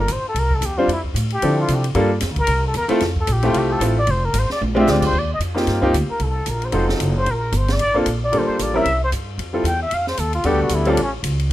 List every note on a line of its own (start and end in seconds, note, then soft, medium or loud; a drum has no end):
0.00 0.14 A#4 medium
0.08 0.22 A1 medium
0.08 hi-hat pedal medium
0.08 ride medium
0.12 0.26 C5 medium
0.23 muted upright bass stroke soft
0.29 0.41 A4 medium
0.34 0.60 C2 medium
0.34 ride medium
0.39 0.56 A#4 loud
0.51 0.67 A4 medium
0.51 kick medium
0.61 0.87 E2 medium
0.61 hi-hat pedal medium
0.61 ride medium
0.66 0.80 G4 medium
0.78 0.88 G3 medium
0.78 0.88 C4 medium
0.78 0.88 D4 medium
0.78 0.89 F4 loud
0.78 0.88 F4 medium
0.78 0.88 C5 medium
0.88 1.14 F2 medium
0.88 ride medium
0.93 1.01 E4 medium
1.04 kick soft
1.14 1.41 A2 medium
1.14 hi-hat pedal medium
1.14 ride medium
1.30 1.57 G4 medium
1.30 ride soft
1.42 1.68 D3 medium
1.42 1.81 F3 medium
1.42 1.81 C4 medium
1.42 1.82 D4 medium
1.42 1.82 E4 medium
1.42 1.82 A4 medium
1.42 ride medium
1.61 1.76 F4 medium
1.68 1.94 C3 medium
1.68 hi-hat pedal medium
1.68 ride medium
1.75 1.87 G4 medium
1.84 ride medium
1.95 2.21 G2 medium
1.95 2.09 G3 medium
1.95 2.09 A#3 medium
1.95 2.09 D4 medium
1.95 2.09 F4 medium
1.95 2.09 A4 medium
1.95 ride medium
2.20 2.31 F2 loud
2.20 snare soft
2.20 hi-hat pedal soft
2.20 ride medium
2.31 2.38 D2 medium
2.36 2.47 A#1 medium
2.36 2.63 A#4 loud
2.36 kick medium
2.36 ride soft
2.47 2.74 C2 medium
2.47 ride medium
2.67 2.76 A4 medium
2.74 2.89 E2 medium
2.74 2.86 A#4 medium
2.74 hi-hat pedal medium
2.74 ride medium
2.88 2.99 A3 medium
2.88 3.00 C4 medium
2.88 3.00 E4 medium
2.88 3.00 F4 medium
2.88 3.00 A4 loud
2.88 muted upright bass stroke soft
2.88 ride medium
3.00 3.27 F2 loud
3.00 snare soft
3.00 ride medium
3.16 kick medium
3.20 3.34 A4 medium
3.27 3.53 A#1 loud
3.27 hi-hat pedal medium
3.27 ride medium
3.32 3.48 G4 medium
3.42 3.79 A3 medium
3.42 3.79 C4 medium
3.42 3.79 E4 medium
3.42 3.79 F4 medium
3.42 3.80 G4 medium
3.42 ride medium
3.47 3.60 F4 medium
3.54 3.80 C2 medium
3.54 ride medium
3.58 3.74 G4 medium
3.72 3.82 A4 loud
3.80 4.06 A1 loud
3.80 3.95 A3 medium
3.80 3.95 C4 medium
3.80 3.95 E4 medium
3.80 3.96 F4 medium
3.80 3.96 A4 medium
3.80 hi-hat pedal medium
3.80 ride medium
3.99 4.12 D5 loud
4.07 4.33 F1 loud
4.07 4.26 C5 loud
4.07 ride medium
4.25 4.40 A#4 medium
4.34 4.48 G#1 loud
4.34 hi-hat pedal medium
4.34 ride medium
4.39 4.52 C5 medium
4.50 4.61 D5 medium
4.50 snare soft
4.61 4.86 A#1 medium
4.61 high tom medium
4.75 5.11 G#3 medium
4.75 5.11 C4 medium
4.75 5.11 D4 medium
4.75 5.12 F4 medium
4.75 5.12 G4 medium
4.75 high tom medium
4.80 4.92 E5 loud
4.87 5.12 D2 loud
4.87 5.05 D5 medium
4.87 snare medium
4.87 hi-hat pedal medium
5.02 kick medium
5.02 crash medium
5.06 5.20 C5 loud
5.13 5.39 D#2 medium
5.18 5.32 D5 medium
5.34 5.39 D#5 medium
5.39 5.66 F2 medium
5.39 hi-hat pedal medium
5.39 ride medium
5.54 5.80 A#3 medium
5.54 5.80 C4 medium
5.54 5.81 D#4 medium
5.54 5.81 F4 medium
5.54 5.81 G4 medium
5.54 snare medium
5.67 5.93 G2 medium
5.67 snare soft
5.67 ride medium
5.82 5.92 A#3 medium
5.82 5.92 C4 medium
5.82 5.93 D#4 medium
5.82 5.93 F4 medium
5.82 5.93 G4 medium
5.82 kick medium
5.93 6.08 D2 medium
5.93 hi-hat pedal medium
5.93 ride medium
6.09 6.24 A#4 medium
6.09 muted upright bass stroke soft
6.20 6.46 C2 medium
6.20 6.51 A4 medium
6.20 ride medium
6.46 6.72 A#1 medium
6.46 6.66 A#4 medium
6.46 hi-hat pedal soft
6.46 ride medium
6.62 6.89 C5 loud
6.62 ride soft
6.72 6.99 F1 medium
6.72 7.12 F#3 medium
6.72 7.12 C4 medium
6.72 7.12 D#4 medium
6.72 7.12 F4 medium
6.72 7.12 A4 medium
6.72 ride medium
6.89 6.95 A4 medium
6.89 snare medium
7.00 7.26 F#1 medium
7.00 hi-hat pedal medium
7.00 ride medium
7.17 7.32 C5 loud
7.26 7.52 A#1 medium
7.26 ride medium
7.31 7.58 A#4 medium
7.52 7.79 G1 loud
7.52 hi-hat pedal medium
7.52 ride medium
7.57 7.74 C5 medium
7.68 snare medium
7.68 ride soft
7.73 7.97 D5 loud
7.79 8.05 A1 medium
7.79 ride medium
7.94 8.05 A#3 medium
7.94 8.05 C4 medium
7.94 8.05 D4 medium
7.94 8.05 F4 medium
7.94 8.06 A4 medium
8.00 8.04 A#4 medium
8.06 8.32 A#1 medium
8.06 hi-hat pedal medium
8.06 ride medium
8.24 8.40 D5 loud
8.32 8.47 G1 medium
8.32 8.72 G3 medium
8.32 8.71 A#3 medium
8.32 8.72 D4 medium
8.32 8.72 F4 medium
8.32 8.72 A4 medium
8.32 ride medium
8.38 8.64 C5 medium
8.48 muted upright bass stroke soft
8.59 8.85 A1 medium
8.59 8.76 D5 medium
8.59 hi-hat pedal medium
8.59 ride medium
8.74 8.84 G3 medium
8.74 8.84 C4 medium
8.74 8.85 C#4 medium
8.74 8.85 E4 medium
8.74 8.85 A#4 medium
8.74 9.01 E5 loud
8.85 9.11 C2 medium
8.85 ride medium
9.04 9.10 C5 loud
9.12 9.37 G2 medium
9.12 hi-hat pedal medium
9.12 ride medium
9.38 9.63 F2 medium
9.38 ride medium
9.53 9.64 G3 medium
9.53 9.64 C4 medium
9.53 9.64 E4 soft
9.53 9.64 F4 medium
9.53 9.65 A4 medium
9.64 9.90 E2 loud
9.64 9.81 G5 medium
9.64 hi-hat pedal medium
9.64 ride medium
9.82 9.95 E5 loud
9.91 10.18 F2 medium
9.91 10.08 F5 loud
9.91 ride medium
10.07 10.21 C5 medium
10.07 snare soft
10.17 10.44 D#2 medium
10.17 10.34 A4 medium
10.17 hi-hat pedal medium
10.17 ride medium
10.33 10.48 F4 medium
10.33 ride medium
10.44 10.53 E2 medium
10.44 10.84 G3 medium
10.44 10.84 B3 medium
10.44 10.84 D4 medium
10.44 10.85 F#4 medium
10.44 10.61 G4 medium
10.44 10.85 A4 medium
10.44 ride medium
10.53 10.61 D2 medium
10.62 10.70 B1 medium
10.62 10.76 F#4 medium
10.69 10.96 D2 loud
10.69 hi-hat pedal medium
10.69 ride medium
10.74 10.91 E4 medium
10.85 10.97 G3 medium
10.85 10.97 C4 medium
10.85 10.97 C#4 medium
10.85 10.97 F4 medium
10.85 10.97 A4 medium
10.85 ride soft
10.90 11.00 D4 medium
10.96 11.22 A1 medium
10.96 ride medium
11.03 11.11 C#4 medium
11.23 11.49 C#2 medium
11.23 hi-hat pedal medium
11.23 ride medium
11.39 ride soft